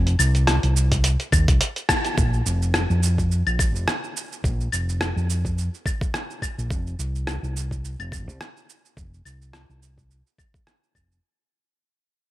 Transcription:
0.00 0.14 F1 loud
0.07 closed hi-hat soft
0.07 cabasa soft
0.19 0.58 C2 medium
0.19 cabasa medium
0.19 claves medium
0.35 closed hi-hat soft
0.35 cabasa soft
0.47 cross-stick medium
0.47 closed hi-hat medium
0.47 cabasa soft
0.63 1.15 C2 medium
0.63 closed hi-hat soft
0.63 cabasa soft
0.76 cabasa medium
0.92 kick medium
0.92 closed hi-hat soft
0.92 cabasa soft
1.04 closed hi-hat medium
1.04 cabasa soft
1.20 closed hi-hat soft
1.20 cabasa soft
1.32 1.45 D#2 loud
1.32 kick loud
1.32 cabasa medium
1.32 claves medium
1.48 1.58 C2 medium
1.48 kick loud
1.48 closed hi-hat medium
1.48 cabasa soft
1.61 closed hi-hat medium
1.61 cabasa soft
1.76 closed hi-hat soft
1.76 cabasa soft
1.89 kick medium
1.89 cross-stick medium
1.89 cabasa medium
1.89 claves medium
2.05 closed hi-hat soft
2.05 cabasa soft
2.18 2.41 A#1 medium
2.18 kick loud
2.18 cabasa soft
2.34 cabasa soft
2.46 2.85 F1 medium
2.46 cabasa medium
2.62 cabasa soft
2.74 cross-stick loud
2.74 cabasa soft
2.90 3.42 F2 medium
2.90 cabasa soft
3.03 cabasa medium
3.18 kick medium
3.18 cabasa soft
3.31 cabasa soft
3.46 3.75 A#1 medium
3.46 cabasa soft
3.46 claves medium
3.59 kick medium
3.59 cabasa medium
3.59 claves medium
3.75 3.85 F1 medium
3.75 cabasa soft
3.88 cross-stick loud
3.88 cabasa soft
4.04 cabasa soft
4.17 cabasa medium
4.32 cabasa soft
4.44 4.67 A#1 medium
4.44 kick loud
4.44 cabasa soft
4.61 cabasa soft
4.72 5.11 F1 medium
4.72 cabasa medium
4.72 claves medium
4.89 cabasa soft
5.01 cross-stick loud
5.01 cabasa soft
5.16 5.68 F2 medium
5.16 cabasa soft
5.30 cabasa medium
5.45 kick medium
5.45 cabasa soft
5.58 cabasa soft
5.74 cabasa soft
5.86 kick loud
5.86 cabasa medium
5.86 claves medium
6.01 kick loud
6.01 cabasa soft
6.14 cross-stick loud
6.14 cabasa soft
6.30 cabasa soft
6.42 kick medium
6.42 cabasa medium
6.42 claves medium
6.58 6.68 A#1 medium
6.58 cabasa soft
6.71 6.94 F1 medium
6.71 kick loud
6.71 cabasa soft
6.87 cabasa soft
6.99 7.38 C2 medium
6.99 cabasa medium
7.15 cabasa soft
7.27 cross-stick medium
7.27 cabasa soft
7.43 7.94 C2 medium
7.43 cabasa soft
7.57 cabasa medium
7.71 kick medium
7.71 cabasa soft
7.85 cabasa soft
7.99 8.28 F1 medium
7.99 cabasa soft
7.99 claves medium
8.12 kick loud
8.12 cabasa medium
8.12 claves soft
8.28 8.38 C2 medium
8.28 cabasa soft
8.41 cross-stick medium
8.41 cabasa soft
8.57 cabasa soft
8.70 cabasa medium
8.85 cabasa soft
8.97 9.20 F1 medium
8.97 kick loud
8.97 cabasa soft
9.14 cabasa soft
9.25 9.64 C2 medium
9.25 cabasa medium
9.25 claves medium
9.42 cabasa soft
9.53 cross-stick medium
9.53 cabasa soft
9.69 10.21 C2 medium
9.69 cabasa soft
9.83 cabasa medium
9.98 kick medium
9.98 cabasa soft
10.11 cabasa soft
10.27 cabasa soft
10.38 kick loud
10.38 cabasa medium
10.38 claves soft
10.54 kick medium
10.54 cabasa soft
10.67 cross-stick medium
10.67 cabasa soft
10.83 cabasa soft
10.95 11.18 F1 medium
10.95 kick medium
10.95 cabasa medium
10.95 claves medium
11.12 cabasa soft

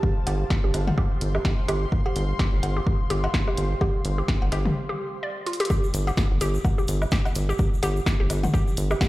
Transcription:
0.00 4.76 G4 medium
0.00 4.76 C5 medium
0.00 4.76 F5 medium
0.00 4.78 C6 medium
0.00 kick loud
0.27 0.44 G1 loud
0.27 0.34 G4 loud
0.27 closed hi-hat medium
0.27 cowbell medium
0.50 kick loud
0.50 snare medium
0.64 0.71 G1 medium
0.64 0.69 G4 medium
0.74 0.92 G1 loud
0.74 closed hi-hat medium
0.74 low woodblock soft
0.88 mid tom medium
0.88 cowbell medium
0.98 1.05 G4 loud
0.98 kick loud
1.21 1.39 G1 medium
1.21 closed hi-hat medium
1.35 1.40 G4 medium
1.35 low woodblock medium
1.45 kick loud
1.45 snare medium
1.45 cowbell medium
1.68 1.86 G1 medium
1.68 1.76 G4 loud
1.68 closed hi-hat medium
1.68 low woodblock medium
1.92 kick loud
2.06 2.11 G4 medium
2.06 cowbell medium
2.16 2.33 G1 loud
2.16 closed hi-hat medium
2.39 2.47 G4 loud
2.39 kick loud
2.39 snare medium
2.53 2.60 G1 medium
2.63 2.81 G1 loud
2.63 closed hi-hat medium
2.63 cowbell medium
2.77 2.82 G4 medium
2.87 kick loud
3.10 3.28 G1 medium
3.10 3.18 G4 loud
3.10 closed hi-hat medium
3.24 cowbell medium
3.24 low woodblock medium
3.34 kick loud
3.34 snare medium
3.47 3.53 G4 medium
3.47 low woodblock medium
3.57 3.75 G1 medium
3.57 closed hi-hat medium
3.81 3.88 G4 loud
3.81 kick loud
3.81 cowbell medium
4.05 4.22 G1 loud
4.05 closed hi-hat medium
4.18 4.24 G4 medium
4.28 kick loud
4.28 snare medium
4.42 4.49 G1 medium
4.42 cowbell medium
4.52 4.70 G1 loud
4.52 4.59 G4 loud
4.52 closed hi-hat medium
4.52 low woodblock medium
4.66 mid tom medium
4.89 4.95 G4 medium
5.23 5.26 D5 medium
5.46 5.54 F4 medium
5.46 closed hi-hat medium
5.53 closed hi-hat medium
5.60 5.64 G4 loud
5.60 closed hi-hat medium
5.65 closed hi-hat medium
5.70 5.77 G4 loud
5.70 kick loud
5.70 shaker medium
5.84 shaker soft
5.94 6.11 G1 loud
5.94 closed hi-hat medium
5.94 shaker loud
6.07 6.13 G4 medium
6.07 cowbell medium
6.07 shaker soft
6.17 kick loud
6.17 snare loud
6.17 shaker soft
6.31 6.38 G1 medium
6.41 6.58 G1 loud
6.41 6.48 G4 loud
6.41 closed hi-hat medium
6.41 shaker medium
6.54 shaker soft
6.65 kick loud
6.65 cowbell medium
6.65 shaker soft
6.78 6.84 G4 medium
6.78 shaker soft
6.88 7.06 G1 medium
6.88 closed hi-hat medium
6.88 shaker medium
7.02 low woodblock medium
7.02 shaker soft
7.11 7.19 G4 loud
7.11 kick loud
7.11 snare loud
7.11 shaker medium
7.25 cowbell medium
7.25 low woodblock medium
7.25 shaker soft
7.35 7.53 G1 medium
7.35 closed hi-hat medium
7.35 shaker loud
7.49 7.55 G4 medium
7.49 shaker soft
7.59 kick loud
7.59 shaker soft
7.74 shaker soft
7.83 8.00 G1 loud
7.83 7.90 G4 loud
7.83 closed hi-hat medium
7.83 cowbell medium
7.83 shaker loud
7.96 shaker soft
8.06 kick loud
8.06 snare medium
8.06 shaker medium
8.20 8.27 G1 medium
8.20 8.25 G4 medium
8.30 8.48 G1 loud
8.30 closed hi-hat loud
8.30 low woodblock medium
8.30 shaker medium
8.44 mid tom medium
8.44 cowbell medium
8.44 shaker soft
8.54 8.61 G4 loud
8.54 kick loud
8.54 shaker soft
8.67 shaker soft
8.77 8.95 G1 medium
8.77 closed hi-hat loud
8.77 shaker medium
8.90 8.96 G4 medium
8.90 low woodblock medium
8.90 shaker soft
9.01 kick loud
9.01 snare loud
9.01 cowbell medium
9.01 shaker medium

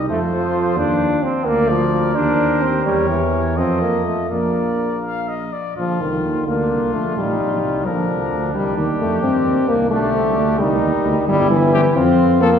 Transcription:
0.00 0.12 C2 medium
0.00 0.11 D#4 soft
0.00 0.11 G4 medium
0.09 0.78 F2 medium
0.09 0.20 A3 medium
0.09 1.88 F4 medium
0.09 1.19 A4 medium
0.09 1.16 C5 medium
0.32 0.79 F3 medium
0.77 1.22 D#2 medium
0.77 1.25 D4 medium
1.23 1.47 C4 medium
1.45 2.17 D2 medium
1.45 1.70 A#3 medium
1.45 3.60 A#4 medium
1.45 2.17 D5 medium
1.69 2.14 F3 medium
2.14 2.85 D#2 medium
2.14 2.64 D4 medium
2.14 3.59 G4 medium
2.14 2.85 C5 medium
2.62 2.84 C4 medium
2.85 3.59 E2 medium
2.85 3.09 G3 medium
2.85 3.59 C#5 medium
3.10 3.57 E3 medium
3.57 4.30 F2 medium
3.57 3.81 C4 medium
3.57 5.53 F4 soft
3.57 4.33 A4 soft
3.57 4.29 D#5 soft
3.81 4.05 A#3 medium
4.06 4.32 A3 medium
4.30 5.51 A#1 soft
4.30 5.04 A#3 medium
4.30 5.54 A#4 soft
4.30 4.97 D5 soft
5.04 5.30 F5 medium
5.28 5.54 D#5 soft
5.53 5.76 D5 soft
5.76 5.99 A#1 soft
5.76 7.19 D3 soft
5.76 6.03 F3 medium
5.76 6.43 F4 soft
6.00 6.25 C2 soft
6.00 6.47 D#3 medium
6.24 6.46 D#2 soft
6.47 6.73 D2 soft
6.47 6.95 A#3 medium
6.47 7.13 D4 soft
6.47 7.86 F4 soft
6.71 6.93 C2 soft
6.94 7.16 A#1 soft
6.94 7.17 A3 medium
7.16 7.39 A1 soft
7.16 7.85 C3 soft
7.16 7.88 G3 medium
7.16 7.85 D#4 medium
7.40 7.63 A#1 soft
7.63 7.85 C2 soft
7.85 8.08 A#1 medium
7.85 8.55 D3 soft
7.85 8.54 F3 medium
7.85 9.87 D4 medium
7.85 8.53 A#4 soft
8.09 8.30 C2 soft
8.31 8.53 D2 medium
8.53 8.76 C2 medium
8.53 9.23 D#3 soft
8.53 8.77 G3 medium
8.53 9.74 G4 medium
8.77 8.99 D#2 medium
8.77 8.87 D#3 medium
9.00 9.22 F2 soft
9.00 9.22 A3 medium
9.23 9.33 G2 medium
9.23 9.92 D#3 soft
9.23 9.70 C4 medium
9.45 9.56 D#2 soft
9.68 9.92 C2 medium
9.68 9.90 A#3 medium
9.91 10.14 B1 medium
9.91 10.61 D3 medium
9.91 10.60 A3 medium
9.91 10.12 D4 medium
9.91 10.57 G4 medium
10.13 10.38 C2 medium
10.13 10.38 C4 medium
10.36 10.58 D2 medium
10.36 10.59 D4 medium
10.59 10.81 C2 medium
10.59 11.28 D#3 medium
10.59 11.28 G3 medium
10.59 11.26 D#4 medium
10.81 10.92 D#2 medium
11.04 11.15 D2 medium
11.27 11.85 G1 medium
11.27 11.50 G3 medium
11.27 11.98 E4 medium
11.50 11.95 E3 medium
11.73 11.81 C3 medium
11.73 11.81 G4 medium
11.96 12.54 F2 medium
11.96 12.43 C4 medium
11.96 12.59 F4 medium
12.41 12.50 F3 medium
12.41 12.59 A#3 medium
12.41 12.50 A4 medium

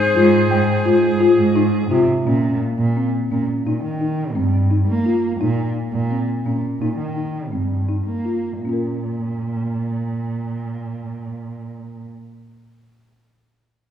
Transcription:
0.00 1.87 G#4 medium
0.00 1.53 C5 loud
0.15 0.44 G#2 loud
0.15 0.34 F4 medium
0.50 0.64 G#2 medium
0.50 0.69 G5 medium
0.85 1.14 G#2 medium
0.85 1.03 F4 medium
1.20 1.39 F4 medium
1.37 1.82 G#2 medium
1.56 1.74 D#4 medium
1.90 2.05 C3 medium
1.90 2.09 F4 medium
2.25 2.55 A#2 medium
2.25 2.63 C#4 medium
2.78 3.08 A#2 medium
2.97 3.15 C4 medium
3.31 3.46 A#2 medium
3.31 3.49 C#4 medium
3.66 3.80 A#2 medium
3.66 3.84 D#4 medium
3.84 4.36 D#3 medium
4.01 4.19 D#4 medium
4.35 4.79 G2 medium
4.35 4.53 C4 medium
4.71 4.89 D#4 medium
4.87 5.32 A#3 medium
5.06 5.24 F4 medium
5.40 5.69 A#2 medium
5.40 5.77 D#4 medium
5.92 6.22 A#2 medium
6.11 6.29 C4 medium
6.45 6.60 A#2 medium
6.45 6.64 C#4 medium
6.80 6.95 A#2 medium
6.80 7.00 D#4 medium
6.98 7.53 D#3 medium
7.17 7.35 D#4 soft
7.52 7.98 G2 medium
7.52 7.71 C4 medium
7.89 8.07 D#4 medium
8.06 8.52 A#3 medium
8.25 8.43 F4 soft
8.60 12.04 A#2 medium
8.60 12.05 A#3 soft
8.65 12.09 C#4 soft
8.69 12.13 F4 soft
8.69 12.17 A#4 soft

